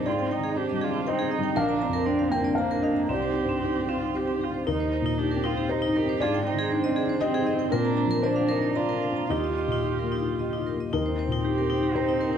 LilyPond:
<<
  \new Staff \with { instrumentName = "Vibraphone" } { \time 3/4 \key ees \major \tempo 4 = 118 aes'16 g''16 g''16 aes'16 c''16 ees''16 aes'16 c''16 g''16 aes'16 ees''16 g''16 | bes'16 bes''16 bes''16 bes'16 d''16 f''16 bes'16 d''16 bes''16 bes'16 f''16 bes''16 | c'16 c''16 c''16 c'16 ees'16 g'16 c'16 ees'16 c''16 c'16 g'16 c''16 | ees'16 c''16 c''16 ees'16 g'16 bes'16 ees'16 g'16 c''16 ees'16 bes'16 c''16 |
aes'16 g''16 g''16 aes'16 c''16 ees''16 aes'16 c''16 g''16 aes'16 ees''16 g''16 | bes'16 bes''16 bes''16 bes'16 d''16 f''16 bes'16 d''16 bes''16 bes'16 f''16 bes''16 | ees'16 ees''16 ees''16 ees'16 g'16 bes'16 ees'16 g'16 ees''16 ees'16 bes'16 ees''16 | ees'16 c''16 c''16 ees'16 g'16 bes'16 ees'16 g'16 c''16 ees'16 bes'16 c''16 | }
  \new Staff \with { instrumentName = "Cello" } { \time 3/4 \key ees \major f'8 ees'8 g'8 f'8 ees'4 | d'8 c'8 d'8 c'8 d'4 | g'4 g'8 f'8 g'8 f'8 | ees'4 g'8 f'8 ees'8 g'8 |
f'8 ees'8 d'4 c'4~ | c'4 d'8 ees'8 f'4 | g'2~ g'8 r8 | r4 g'4 ees'4 | }
  \new Staff \with { instrumentName = "Felt piano" } { \time 3/4 \key ees \major << { d''2 ees''4 | f''4. g''8 f''8 ees''8 | d''2 r4 | bes'2 c''4 |
d''2 ees''4 | bes'4 c''4 d''4 | ees''2~ ees''8 r8 | bes'2 c''4 | } \\ { \tuplet 3/2 { aes,8 c'8 ees8 c'8 g8 c'8 c''8 c'8 g8 } | \tuplet 3/2 { bes,,8 d'8 f,8 d'8 c'8 d'8 c''8 d'8 c'8 } | \tuplet 3/2 { c,8 ees'8 g,8 ees'8 c'8 ees'8 g'8 ees'8 c'8 } | \tuplet 3/2 { ees,8 ees'8 bes,8 ees'8 c'8 ees'8 g'8 ees'8 c'8 } |
\tuplet 3/2 { aes,8 ees'8 ees8 ees'8 c'8 ees'8 g'8 ees'8 c'8 } | \tuplet 3/2 { bes,8 d'8 f8 d'8 c'8 d'8 f'8 d'8 c'8 } | \tuplet 3/2 { ees,8 f'8 bes,8 f'8 bes8 f'8 g'8 f'8 bes8 } | \tuplet 3/2 { ees,8 ees'8 bes,8 ees'8 c'8 ees'8 g'8 ees'8 c'8 } | } >> }
  \new Staff \with { instrumentName = "Viola" } { \time 3/4 \key ees \major c'8 ees'8 d'4 c'8 ees'8 | d'4 c'8 bes8 bes4 | c'2~ c'8 r8 | ees'4 d'8 c'8 ees'4 |
d'8 c'4. c'4 | d'4 d'4 d'4 | f'2~ f'8 r8 | c'2. | }
>>